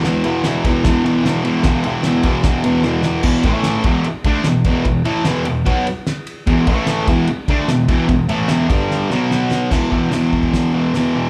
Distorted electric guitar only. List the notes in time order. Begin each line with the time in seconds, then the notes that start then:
0.05 E2 B2 E3
0.24 E2 B2 E3
0.45 E2 B2 E3
0.65 E2 B2 E3
0.85 E2 B2 E3
1.05 E2 B2 E3
1.24 E2 B2 E3
1.44 E2 B2 E3
1.65 E2 B2 E3
1.85 E2 B2 E3
2.05 E2 B2 E3
2.25 E2 B2 E3
2.45 E2 B2 E3
2.65 E2 B2 E3
2.84 E2 B2 E3
3.04 E2 B2 E3
3.24 E2 B2 E3
3.45 A2 E3 A3
3.85 E2 B2 E3
4.06 muted distorted electric guitar stroke
4.25 D3 A3 D4
4.46 E2 B2
4.65 E2 B2 E3
4.85 E2 B2
5.05 A2 E3 A3
5.25 E2 B2 E3
5.46 E2 B2
5.65 B2 F#3 B3
6.47 E2 B2 E3
6.67 A2 E3 A3
7.08 E2 B2 E3
7.30 muted distorted electric guitar stroke
7.49 D3 A3 D4
7.68 E2 B2
7.88 E2 B2 E3
8.08 E2 B2
8.29 A2 E3 A3
8.49 E2 B2 E3
8.69 G2 D3 G3
9.10 B2 F#3 B3
9.70 E2 B2 E3
9.91 B2 E3
10.11 E2 B2 E3
10.74 B2 E3
10.95 E2 B2 E3
11.14 B2 E3